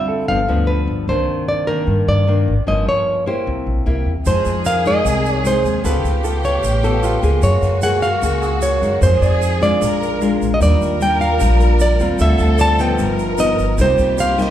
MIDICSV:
0, 0, Header, 1, 8, 480
1, 0, Start_track
1, 0, Key_signature, -3, "minor"
1, 0, Tempo, 397088
1, 1303, Time_signature, 4, 2, 24, 8
1, 5143, Key_signature, -4, "minor"
1, 17532, End_track
2, 0, Start_track
2, 0, Title_t, "Nylon-string guitar"
2, 0, Program_c, 0, 24
2, 0, Note_on_c, 0, 76, 85
2, 303, Note_off_c, 0, 76, 0
2, 343, Note_on_c, 0, 77, 94
2, 812, Note_on_c, 0, 71, 88
2, 837, Note_off_c, 0, 77, 0
2, 1312, Note_off_c, 0, 71, 0
2, 1317, Note_on_c, 0, 72, 84
2, 1758, Note_off_c, 0, 72, 0
2, 1794, Note_on_c, 0, 74, 82
2, 2022, Note_on_c, 0, 70, 73
2, 2036, Note_off_c, 0, 74, 0
2, 2518, Note_off_c, 0, 70, 0
2, 2520, Note_on_c, 0, 74, 96
2, 3184, Note_off_c, 0, 74, 0
2, 3240, Note_on_c, 0, 75, 80
2, 3479, Note_off_c, 0, 75, 0
2, 3488, Note_on_c, 0, 73, 84
2, 3924, Note_off_c, 0, 73, 0
2, 3960, Note_on_c, 0, 72, 69
2, 4623, Note_off_c, 0, 72, 0
2, 5164, Note_on_c, 0, 72, 68
2, 5633, Note_off_c, 0, 72, 0
2, 5638, Note_on_c, 0, 77, 83
2, 5854, Note_off_c, 0, 77, 0
2, 5890, Note_on_c, 0, 75, 82
2, 6446, Note_off_c, 0, 75, 0
2, 6446, Note_on_c, 0, 73, 82
2, 6611, Note_on_c, 0, 72, 81
2, 6617, Note_off_c, 0, 73, 0
2, 7071, Note_off_c, 0, 72, 0
2, 7076, Note_on_c, 0, 71, 77
2, 7796, Note_on_c, 0, 73, 79
2, 7810, Note_off_c, 0, 71, 0
2, 8699, Note_off_c, 0, 73, 0
2, 8986, Note_on_c, 0, 73, 73
2, 9463, Note_off_c, 0, 73, 0
2, 9468, Note_on_c, 0, 78, 89
2, 9694, Note_off_c, 0, 78, 0
2, 9699, Note_on_c, 0, 77, 88
2, 10371, Note_off_c, 0, 77, 0
2, 10426, Note_on_c, 0, 73, 92
2, 10909, Note_off_c, 0, 73, 0
2, 10914, Note_on_c, 0, 72, 80
2, 11636, Note_on_c, 0, 74, 91
2, 11648, Note_off_c, 0, 72, 0
2, 12540, Note_off_c, 0, 74, 0
2, 12741, Note_on_c, 0, 75, 77
2, 12822, Note_off_c, 0, 75, 0
2, 12844, Note_on_c, 0, 74, 85
2, 13322, Note_off_c, 0, 74, 0
2, 13327, Note_on_c, 0, 79, 97
2, 13546, Note_off_c, 0, 79, 0
2, 13551, Note_on_c, 0, 77, 89
2, 14217, Note_off_c, 0, 77, 0
2, 14283, Note_on_c, 0, 74, 102
2, 14766, Note_off_c, 0, 74, 0
2, 14766, Note_on_c, 0, 76, 96
2, 15239, Note_off_c, 0, 76, 0
2, 15244, Note_on_c, 0, 81, 106
2, 15481, Note_off_c, 0, 81, 0
2, 15481, Note_on_c, 0, 79, 110
2, 16193, Note_off_c, 0, 79, 0
2, 16197, Note_on_c, 0, 75, 100
2, 16636, Note_off_c, 0, 75, 0
2, 16698, Note_on_c, 0, 72, 94
2, 17169, Note_on_c, 0, 77, 92
2, 17173, Note_off_c, 0, 72, 0
2, 17431, Note_off_c, 0, 77, 0
2, 17431, Note_on_c, 0, 75, 80
2, 17532, Note_off_c, 0, 75, 0
2, 17532, End_track
3, 0, Start_track
3, 0, Title_t, "Grand piano"
3, 0, Program_c, 1, 0
3, 0, Control_c, 1, 64, 127
3, 95, Note_on_c, 1, 69, 53
3, 359, Control_c, 1, 64, 0
3, 545, Note_off_c, 1, 69, 0
3, 556, Control_c, 1, 64, 127
3, 1319, Control_c, 1, 64, 0
3, 5374, Control_c, 1, 64, 127
3, 5629, Note_on_c, 1, 70, 57
3, 6984, Note_off_c, 1, 70, 0
3, 7064, Note_on_c, 1, 65, 37
3, 7077, Control_c, 1, 64, 0
3, 7297, Control_c, 1, 64, 127
3, 8421, Note_off_c, 1, 65, 0
3, 8497, Note_on_c, 1, 65, 55
3, 8995, Control_c, 1, 64, 0
3, 9170, Note_off_c, 1, 65, 0
3, 9187, Control_c, 1, 64, 127
3, 10175, Note_on_c, 1, 68, 47
3, 10913, Control_c, 1, 64, 0
3, 11089, Note_off_c, 1, 68, 0
3, 11139, Note_on_c, 1, 74, 50
3, 11153, Control_c, 1, 64, 127
3, 11875, Control_c, 1, 64, 0
3, 12051, Note_off_c, 1, 74, 0
3, 14746, Note_on_c, 1, 69, 47
3, 14955, Control_c, 1, 64, 127
3, 15221, Note_on_c, 1, 74, 54
3, 15655, Note_off_c, 1, 69, 0
3, 15667, Note_off_c, 1, 74, 0
3, 15717, Control_c, 1, 64, 0
3, 16903, Control_c, 1, 64, 127
3, 17143, Note_on_c, 1, 72, 47
3, 17532, Note_off_c, 1, 72, 0
3, 17532, End_track
4, 0, Start_track
4, 0, Title_t, "Violin section"
4, 0, Program_c, 2, 48
4, 5134, Note_on_c, 2, 68, 102
4, 7009, Note_off_c, 2, 68, 0
4, 7072, Note_on_c, 2, 67, 95
4, 8979, Note_on_c, 2, 66, 90
4, 8986, Note_off_c, 2, 67, 0
4, 10899, Note_off_c, 2, 66, 0
4, 10903, Note_on_c, 2, 68, 102
4, 11861, Note_off_c, 2, 68, 0
4, 11870, Note_on_c, 2, 70, 99
4, 12536, Note_off_c, 2, 70, 0
4, 12828, Note_on_c, 2, 70, 105
4, 14696, Note_off_c, 2, 70, 0
4, 14738, Note_on_c, 2, 69, 99
4, 15699, Note_off_c, 2, 69, 0
4, 15701, Note_on_c, 2, 70, 90
4, 16655, Note_on_c, 2, 67, 95
4, 16661, Note_off_c, 2, 70, 0
4, 17532, Note_off_c, 2, 67, 0
4, 17532, End_track
5, 0, Start_track
5, 0, Title_t, "Glass harmonica"
5, 0, Program_c, 3, 92
5, 5148, Note_on_c, 3, 63, 58
5, 5149, Note_on_c, 3, 68, 80
5, 7045, Note_off_c, 3, 63, 0
5, 7045, Note_on_c, 3, 77, 65
5, 7046, Note_off_c, 3, 68, 0
5, 7048, Note_on_c, 3, 71, 72
5, 7059, Note_on_c, 3, 57, 70
5, 8954, Note_off_c, 3, 71, 0
5, 8956, Note_on_c, 3, 56, 65
5, 8960, Note_off_c, 3, 57, 0
5, 8967, Note_on_c, 3, 70, 77
5, 10853, Note_off_c, 3, 77, 0
5, 10868, Note_off_c, 3, 56, 0
5, 10874, Note_off_c, 3, 70, 0
5, 10904, Note_on_c, 3, 68, 81
5, 10908, Note_on_c, 3, 63, 59
5, 11852, Note_off_c, 3, 68, 0
5, 11855, Note_off_c, 3, 63, 0
5, 11869, Note_on_c, 3, 62, 53
5, 11870, Note_on_c, 3, 56, 62
5, 11876, Note_on_c, 3, 70, 67
5, 12815, Note_off_c, 3, 56, 0
5, 12815, Note_off_c, 3, 62, 0
5, 12819, Note_off_c, 3, 70, 0
5, 12824, Note_on_c, 3, 65, 59
5, 12825, Note_on_c, 3, 74, 81
5, 12829, Note_on_c, 3, 55, 65
5, 14724, Note_off_c, 3, 74, 0
5, 14741, Note_on_c, 3, 72, 71
5, 14753, Note_on_c, 3, 76, 60
5, 15676, Note_off_c, 3, 55, 0
5, 15691, Note_off_c, 3, 72, 0
5, 15697, Note_off_c, 3, 76, 0
5, 15703, Note_on_c, 3, 59, 64
5, 15705, Note_on_c, 3, 75, 73
5, 16624, Note_off_c, 3, 65, 0
5, 16652, Note_off_c, 3, 59, 0
5, 16653, Note_off_c, 3, 75, 0
5, 16661, Note_on_c, 3, 72, 81
5, 16667, Note_on_c, 3, 58, 66
5, 16669, Note_on_c, 3, 63, 62
5, 17532, Note_off_c, 3, 58, 0
5, 17532, Note_off_c, 3, 63, 0
5, 17532, Note_off_c, 3, 72, 0
5, 17532, End_track
6, 0, Start_track
6, 0, Title_t, "Nylon-string guitar"
6, 0, Program_c, 4, 24
6, 0, Note_on_c, 4, 50, 60
6, 0, Note_on_c, 4, 55, 51
6, 0, Note_on_c, 4, 60, 57
6, 0, Note_on_c, 4, 65, 57
6, 304, Note_off_c, 4, 55, 0
6, 308, Note_off_c, 4, 60, 0
6, 309, Note_off_c, 4, 65, 0
6, 318, Note_off_c, 4, 50, 0
6, 342, Note_on_c, 4, 43, 52
6, 350, Note_on_c, 4, 53, 57
6, 351, Note_on_c, 4, 62, 53
6, 354, Note_on_c, 4, 59, 61
6, 486, Note_off_c, 4, 59, 0
6, 487, Note_off_c, 4, 53, 0
6, 488, Note_off_c, 4, 62, 0
6, 585, Note_on_c, 4, 53, 66
6, 591, Note_on_c, 4, 59, 62
6, 595, Note_on_c, 4, 62, 72
6, 1267, Note_off_c, 4, 53, 0
6, 1268, Note_off_c, 4, 59, 0
6, 1271, Note_off_c, 4, 62, 0
6, 1280, Note_off_c, 4, 43, 0
6, 1310, Note_on_c, 4, 48, 54
6, 1315, Note_on_c, 4, 51, 58
6, 1317, Note_on_c, 4, 58, 55
6, 1323, Note_on_c, 4, 62, 60
6, 1992, Note_off_c, 4, 51, 0
6, 1992, Note_off_c, 4, 58, 0
6, 1995, Note_off_c, 4, 62, 0
6, 2027, Note_on_c, 4, 51, 68
6, 2034, Note_on_c, 4, 58, 66
6, 2038, Note_on_c, 4, 62, 75
6, 2243, Note_off_c, 4, 48, 0
6, 2261, Note_on_c, 4, 43, 47
6, 2708, Note_off_c, 4, 51, 0
6, 2709, Note_off_c, 4, 58, 0
6, 2713, Note_off_c, 4, 62, 0
6, 2746, Note_on_c, 4, 51, 59
6, 2754, Note_on_c, 4, 58, 64
6, 2764, Note_on_c, 4, 62, 68
6, 3055, Note_off_c, 4, 51, 0
6, 3059, Note_off_c, 4, 58, 0
6, 3062, Note_off_c, 4, 62, 0
6, 3199, Note_off_c, 4, 43, 0
6, 3223, Note_on_c, 4, 53, 57
6, 3227, Note_on_c, 4, 43, 49
6, 3235, Note_on_c, 4, 58, 56
6, 3239, Note_on_c, 4, 61, 51
6, 3905, Note_off_c, 4, 53, 0
6, 3910, Note_off_c, 4, 58, 0
6, 3913, Note_off_c, 4, 61, 0
6, 3944, Note_on_c, 4, 58, 60
6, 3953, Note_on_c, 4, 64, 64
6, 3957, Note_on_c, 4, 67, 69
6, 4162, Note_off_c, 4, 43, 0
6, 4186, Note_on_c, 4, 48, 49
6, 4627, Note_off_c, 4, 58, 0
6, 4629, Note_off_c, 4, 64, 0
6, 4632, Note_off_c, 4, 67, 0
6, 4665, Note_on_c, 4, 58, 61
6, 4670, Note_on_c, 4, 64, 58
6, 4674, Note_on_c, 4, 67, 69
6, 4974, Note_off_c, 4, 58, 0
6, 4977, Note_off_c, 4, 64, 0
6, 4977, Note_off_c, 4, 67, 0
6, 5121, Note_off_c, 4, 48, 0
6, 5146, Note_on_c, 4, 56, 52
6, 5148, Note_on_c, 4, 53, 59
6, 5153, Note_on_c, 4, 63, 58
6, 5622, Note_off_c, 4, 56, 0
6, 5623, Note_off_c, 4, 63, 0
6, 5865, Note_on_c, 4, 56, 64
6, 5870, Note_on_c, 4, 63, 68
6, 6082, Note_off_c, 4, 53, 0
6, 6098, Note_on_c, 4, 48, 56
6, 6545, Note_off_c, 4, 56, 0
6, 6548, Note_off_c, 4, 63, 0
6, 6572, Note_on_c, 4, 56, 65
6, 6577, Note_on_c, 4, 63, 55
6, 7036, Note_off_c, 4, 48, 0
6, 7038, Note_off_c, 4, 56, 0
6, 7039, Note_off_c, 4, 63, 0
6, 7058, Note_on_c, 4, 49, 60
6, 7062, Note_on_c, 4, 59, 58
6, 7070, Note_on_c, 4, 65, 57
6, 7071, Note_on_c, 4, 69, 62
6, 7370, Note_off_c, 4, 59, 0
6, 7372, Note_off_c, 4, 65, 0
6, 7375, Note_off_c, 4, 69, 0
6, 7535, Note_on_c, 4, 59, 54
6, 7540, Note_on_c, 4, 65, 52
6, 7544, Note_on_c, 4, 69, 53
6, 7996, Note_off_c, 4, 49, 0
6, 8015, Note_off_c, 4, 59, 0
6, 8018, Note_off_c, 4, 65, 0
6, 8018, Note_on_c, 4, 49, 52
6, 8019, Note_off_c, 4, 69, 0
6, 8255, Note_on_c, 4, 59, 68
6, 8263, Note_on_c, 4, 65, 58
6, 8267, Note_on_c, 4, 69, 81
6, 8700, Note_off_c, 4, 59, 0
6, 8702, Note_off_c, 4, 65, 0
6, 8705, Note_off_c, 4, 69, 0
6, 8728, Note_on_c, 4, 58, 60
6, 8740, Note_on_c, 4, 68, 67
6, 8955, Note_off_c, 4, 49, 0
6, 8970, Note_on_c, 4, 54, 57
6, 9441, Note_off_c, 4, 58, 0
6, 9452, Note_off_c, 4, 68, 0
6, 9455, Note_on_c, 4, 58, 51
6, 9461, Note_on_c, 4, 65, 59
6, 9467, Note_on_c, 4, 68, 71
6, 9767, Note_off_c, 4, 58, 0
6, 9768, Note_off_c, 4, 65, 0
6, 9773, Note_off_c, 4, 68, 0
6, 9911, Note_off_c, 4, 54, 0
6, 9938, Note_on_c, 4, 49, 52
6, 9946, Note_on_c, 4, 58, 56
6, 9952, Note_on_c, 4, 68, 66
6, 10418, Note_off_c, 4, 58, 0
6, 10423, Note_off_c, 4, 68, 0
6, 10666, Note_on_c, 4, 56, 62
6, 10673, Note_on_c, 4, 63, 61
6, 10876, Note_off_c, 4, 49, 0
6, 10893, Note_on_c, 4, 53, 56
6, 11584, Note_off_c, 4, 56, 0
6, 11588, Note_off_c, 4, 63, 0
6, 11607, Note_off_c, 4, 53, 0
6, 11612, Note_on_c, 4, 56, 65
6, 11622, Note_on_c, 4, 62, 57
6, 11623, Note_on_c, 4, 65, 76
6, 11852, Note_on_c, 4, 46, 56
6, 12299, Note_off_c, 4, 56, 0
6, 12301, Note_off_c, 4, 62, 0
6, 12303, Note_off_c, 4, 65, 0
6, 12341, Note_on_c, 4, 56, 62
6, 12347, Note_on_c, 4, 62, 67
6, 12359, Note_on_c, 4, 65, 69
6, 12792, Note_off_c, 4, 46, 0
6, 12801, Note_off_c, 4, 56, 0
6, 12806, Note_off_c, 4, 62, 0
6, 12808, Note_off_c, 4, 65, 0
6, 12818, Note_on_c, 4, 55, 54
6, 12822, Note_on_c, 4, 51, 54
6, 12829, Note_on_c, 4, 62, 57
6, 12830, Note_on_c, 4, 65, 58
6, 13261, Note_off_c, 4, 55, 0
6, 13265, Note_off_c, 4, 62, 0
6, 13266, Note_off_c, 4, 65, 0
6, 13297, Note_on_c, 4, 55, 57
6, 13308, Note_on_c, 4, 62, 57
6, 13314, Note_on_c, 4, 65, 53
6, 13609, Note_off_c, 4, 55, 0
6, 13611, Note_off_c, 4, 62, 0
6, 13616, Note_off_c, 4, 65, 0
6, 13758, Note_off_c, 4, 51, 0
6, 13775, Note_on_c, 4, 46, 59
6, 13781, Note_on_c, 4, 55, 59
6, 13785, Note_on_c, 4, 62, 60
6, 13790, Note_on_c, 4, 65, 67
6, 14462, Note_off_c, 4, 55, 0
6, 14463, Note_off_c, 4, 62, 0
6, 14467, Note_off_c, 4, 65, 0
6, 14501, Note_on_c, 4, 55, 62
6, 14512, Note_on_c, 4, 60, 62
6, 14513, Note_on_c, 4, 65, 73
6, 14715, Note_off_c, 4, 46, 0
6, 14752, Note_on_c, 4, 50, 57
6, 15424, Note_off_c, 4, 55, 0
6, 15426, Note_off_c, 4, 60, 0
6, 15428, Note_off_c, 4, 65, 0
6, 15464, Note_on_c, 4, 53, 71
6, 15471, Note_on_c, 4, 59, 75
6, 15475, Note_on_c, 4, 63, 75
6, 15682, Note_off_c, 4, 50, 0
6, 15701, Note_on_c, 4, 43, 54
6, 16145, Note_off_c, 4, 53, 0
6, 16146, Note_off_c, 4, 59, 0
6, 16149, Note_off_c, 4, 63, 0
6, 16171, Note_on_c, 4, 53, 56
6, 16177, Note_on_c, 4, 59, 62
6, 16179, Note_on_c, 4, 63, 75
6, 16637, Note_off_c, 4, 43, 0
6, 16637, Note_off_c, 4, 53, 0
6, 16639, Note_off_c, 4, 59, 0
6, 16641, Note_off_c, 4, 63, 0
6, 16659, Note_on_c, 4, 48, 59
6, 16660, Note_on_c, 4, 55, 59
6, 16666, Note_on_c, 4, 58, 58
6, 16670, Note_on_c, 4, 63, 66
6, 17342, Note_off_c, 4, 55, 0
6, 17344, Note_off_c, 4, 58, 0
6, 17347, Note_off_c, 4, 63, 0
6, 17378, Note_on_c, 4, 55, 66
6, 17385, Note_on_c, 4, 58, 66
6, 17387, Note_on_c, 4, 63, 77
6, 17532, Note_off_c, 4, 48, 0
6, 17532, Note_off_c, 4, 55, 0
6, 17532, Note_off_c, 4, 58, 0
6, 17532, Note_off_c, 4, 63, 0
6, 17532, End_track
7, 0, Start_track
7, 0, Title_t, "Upright bass"
7, 0, Program_c, 5, 32
7, 348, Note_on_c, 5, 31, 78
7, 569, Note_off_c, 5, 31, 0
7, 591, Note_on_c, 5, 38, 80
7, 1034, Note_off_c, 5, 38, 0
7, 1058, Note_on_c, 5, 31, 88
7, 1284, Note_off_c, 5, 31, 0
7, 1302, Note_on_c, 5, 36, 88
7, 1526, Note_off_c, 5, 36, 0
7, 2260, Note_on_c, 5, 43, 86
7, 2485, Note_off_c, 5, 43, 0
7, 2510, Note_on_c, 5, 43, 74
7, 2954, Note_off_c, 5, 43, 0
7, 2996, Note_on_c, 5, 32, 75
7, 3213, Note_off_c, 5, 32, 0
7, 3233, Note_on_c, 5, 31, 92
7, 3452, Note_off_c, 5, 31, 0
7, 4197, Note_on_c, 5, 36, 90
7, 4414, Note_off_c, 5, 36, 0
7, 4430, Note_on_c, 5, 34, 74
7, 4643, Note_off_c, 5, 34, 0
7, 4668, Note_on_c, 5, 36, 83
7, 4882, Note_off_c, 5, 36, 0
7, 4907, Note_on_c, 5, 40, 68
7, 5122, Note_off_c, 5, 40, 0
7, 5153, Note_on_c, 5, 41, 93
7, 5372, Note_off_c, 5, 41, 0
7, 5393, Note_on_c, 5, 41, 84
7, 6059, Note_off_c, 5, 41, 0
7, 6103, Note_on_c, 5, 36, 83
7, 6774, Note_off_c, 5, 36, 0
7, 6821, Note_on_c, 5, 39, 77
7, 7045, Note_off_c, 5, 39, 0
7, 7062, Note_on_c, 5, 37, 93
7, 7285, Note_off_c, 5, 37, 0
7, 7300, Note_on_c, 5, 37, 80
7, 7972, Note_off_c, 5, 37, 0
7, 8019, Note_on_c, 5, 33, 93
7, 8691, Note_off_c, 5, 33, 0
7, 8735, Note_on_c, 5, 37, 84
7, 8961, Note_off_c, 5, 37, 0
7, 8976, Note_on_c, 5, 42, 94
7, 9201, Note_off_c, 5, 42, 0
7, 9213, Note_on_c, 5, 42, 72
7, 9888, Note_off_c, 5, 42, 0
7, 9939, Note_on_c, 5, 37, 86
7, 10611, Note_off_c, 5, 37, 0
7, 10660, Note_on_c, 5, 42, 80
7, 10883, Note_off_c, 5, 42, 0
7, 10900, Note_on_c, 5, 41, 101
7, 11123, Note_off_c, 5, 41, 0
7, 11139, Note_on_c, 5, 41, 82
7, 11811, Note_off_c, 5, 41, 0
7, 11869, Note_on_c, 5, 34, 92
7, 12536, Note_off_c, 5, 34, 0
7, 12589, Note_on_c, 5, 34, 78
7, 12808, Note_off_c, 5, 34, 0
7, 12818, Note_on_c, 5, 39, 99
7, 13042, Note_off_c, 5, 39, 0
7, 13066, Note_on_c, 5, 39, 76
7, 13735, Note_off_c, 5, 39, 0
7, 13790, Note_on_c, 5, 34, 87
7, 14457, Note_off_c, 5, 34, 0
7, 14503, Note_on_c, 5, 39, 78
7, 14725, Note_off_c, 5, 39, 0
7, 14746, Note_on_c, 5, 38, 96
7, 14966, Note_off_c, 5, 38, 0
7, 14984, Note_on_c, 5, 38, 86
7, 15654, Note_off_c, 5, 38, 0
7, 15707, Note_on_c, 5, 31, 93
7, 16375, Note_off_c, 5, 31, 0
7, 16424, Note_on_c, 5, 31, 76
7, 16646, Note_off_c, 5, 31, 0
7, 16656, Note_on_c, 5, 36, 101
7, 16881, Note_off_c, 5, 36, 0
7, 16899, Note_on_c, 5, 36, 85
7, 17532, Note_off_c, 5, 36, 0
7, 17532, End_track
8, 0, Start_track
8, 0, Title_t, "Drums"
8, 5147, Note_on_c, 9, 82, 52
8, 5267, Note_off_c, 9, 82, 0
8, 5380, Note_on_c, 9, 82, 27
8, 5501, Note_off_c, 9, 82, 0
8, 5623, Note_on_c, 9, 82, 68
8, 5744, Note_off_c, 9, 82, 0
8, 5871, Note_on_c, 9, 82, 29
8, 5992, Note_off_c, 9, 82, 0
8, 6115, Note_on_c, 9, 82, 64
8, 6236, Note_off_c, 9, 82, 0
8, 6354, Note_on_c, 9, 82, 26
8, 6475, Note_off_c, 9, 82, 0
8, 6593, Note_on_c, 9, 82, 64
8, 6714, Note_off_c, 9, 82, 0
8, 6832, Note_on_c, 9, 82, 27
8, 6953, Note_off_c, 9, 82, 0
8, 7072, Note_on_c, 9, 82, 59
8, 7193, Note_off_c, 9, 82, 0
8, 7310, Note_on_c, 9, 82, 28
8, 7431, Note_off_c, 9, 82, 0
8, 7545, Note_on_c, 9, 82, 68
8, 7666, Note_off_c, 9, 82, 0
8, 7787, Note_on_c, 9, 82, 28
8, 7908, Note_off_c, 9, 82, 0
8, 8022, Note_on_c, 9, 82, 66
8, 8143, Note_off_c, 9, 82, 0
8, 8266, Note_on_c, 9, 82, 26
8, 8387, Note_off_c, 9, 82, 0
8, 8501, Note_on_c, 9, 82, 58
8, 8622, Note_off_c, 9, 82, 0
8, 8741, Note_on_c, 9, 82, 24
8, 8862, Note_off_c, 9, 82, 0
8, 8974, Note_on_c, 9, 82, 57
8, 9095, Note_off_c, 9, 82, 0
8, 9215, Note_on_c, 9, 82, 24
8, 9336, Note_off_c, 9, 82, 0
8, 9451, Note_on_c, 9, 82, 60
8, 9572, Note_off_c, 9, 82, 0
8, 9697, Note_on_c, 9, 82, 29
8, 9818, Note_off_c, 9, 82, 0
8, 9941, Note_on_c, 9, 82, 61
8, 10062, Note_off_c, 9, 82, 0
8, 10182, Note_on_c, 9, 82, 27
8, 10303, Note_off_c, 9, 82, 0
8, 10419, Note_on_c, 9, 82, 64
8, 10539, Note_off_c, 9, 82, 0
8, 10667, Note_on_c, 9, 82, 23
8, 10787, Note_off_c, 9, 82, 0
8, 10907, Note_on_c, 9, 82, 63
8, 11028, Note_off_c, 9, 82, 0
8, 11147, Note_on_c, 9, 82, 28
8, 11268, Note_off_c, 9, 82, 0
8, 11388, Note_on_c, 9, 82, 68
8, 11509, Note_off_c, 9, 82, 0
8, 11633, Note_on_c, 9, 82, 27
8, 11754, Note_off_c, 9, 82, 0
8, 11872, Note_on_c, 9, 82, 62
8, 11993, Note_off_c, 9, 82, 0
8, 12121, Note_on_c, 9, 82, 30
8, 12242, Note_off_c, 9, 82, 0
8, 12347, Note_on_c, 9, 82, 58
8, 12468, Note_off_c, 9, 82, 0
8, 12596, Note_on_c, 9, 82, 27
8, 12716, Note_off_c, 9, 82, 0
8, 12833, Note_on_c, 9, 82, 56
8, 12954, Note_off_c, 9, 82, 0
8, 13075, Note_on_c, 9, 82, 26
8, 13196, Note_off_c, 9, 82, 0
8, 13309, Note_on_c, 9, 82, 65
8, 13430, Note_off_c, 9, 82, 0
8, 13554, Note_on_c, 9, 82, 25
8, 13675, Note_off_c, 9, 82, 0
8, 13781, Note_on_c, 9, 82, 62
8, 13902, Note_off_c, 9, 82, 0
8, 14024, Note_on_c, 9, 82, 28
8, 14144, Note_off_c, 9, 82, 0
8, 14260, Note_on_c, 9, 82, 68
8, 14381, Note_off_c, 9, 82, 0
8, 14499, Note_on_c, 9, 82, 24
8, 14620, Note_off_c, 9, 82, 0
8, 14733, Note_on_c, 9, 82, 59
8, 14854, Note_off_c, 9, 82, 0
8, 14970, Note_on_c, 9, 82, 26
8, 15091, Note_off_c, 9, 82, 0
8, 15212, Note_on_c, 9, 82, 64
8, 15333, Note_off_c, 9, 82, 0
8, 15454, Note_on_c, 9, 82, 28
8, 15575, Note_off_c, 9, 82, 0
8, 15693, Note_on_c, 9, 82, 64
8, 15814, Note_off_c, 9, 82, 0
8, 15942, Note_on_c, 9, 82, 26
8, 16063, Note_off_c, 9, 82, 0
8, 16174, Note_on_c, 9, 82, 69
8, 16295, Note_off_c, 9, 82, 0
8, 16422, Note_on_c, 9, 82, 27
8, 16543, Note_off_c, 9, 82, 0
8, 16658, Note_on_c, 9, 82, 55
8, 16779, Note_off_c, 9, 82, 0
8, 16899, Note_on_c, 9, 82, 27
8, 17020, Note_off_c, 9, 82, 0
8, 17144, Note_on_c, 9, 82, 67
8, 17265, Note_off_c, 9, 82, 0
8, 17391, Note_on_c, 9, 82, 29
8, 17512, Note_off_c, 9, 82, 0
8, 17532, End_track
0, 0, End_of_file